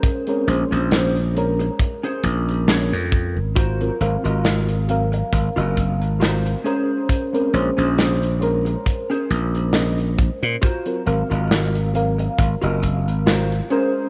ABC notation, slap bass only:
X:1
M:4/4
L:1/16
Q:"Swing 16ths" 1/4=68
K:Abmix
V:1 name="Slap bass" clef=bass
z2 B,,, B,,,4 z3 B,,,3 F,,2 A,,,- | A,,, z A,,, A,,,4 z A,,, G,,,2 A,,,2 z3 | z2 B,,, B,,,4 z3 B,,,4 z B,, | z2 A,,, A,,,4 z A,,, G,,,2 A,,,2 z3 |]